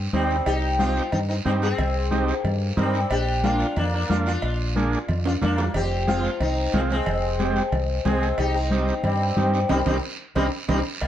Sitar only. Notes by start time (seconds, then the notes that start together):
0.14 G3 C4
0.46 D#4 G4
0.80 C4 F4
1.12 C4 D#4
1.29 C4 D#4
1.46 G3 C4
1.63 C4 G#4
2.40 A#3
2.78 G3 C4
3.11 D4 G4
3.44 D4 F4
3.77 A#3 D4
3.94 A#3 D4
4.11 D4 F4
4.27 D4 F4
5.26 D4 F4
5.43 A#3 D4
5.76 C4 G4
6.09 C4 F4
6.41 C4 D#4
6.74 G#3 C4
6.91 G#3 C4
8.06 G#3 C4
8.39 D#4 G4
8.55 C4 D#4
9.04 G3 C4
9.69 G3 C4 D#4
9.85 G3 C4 D#4
10.35 G3 C4 D#4
10.68 G3 C4 D#4
11.01 G3 A#3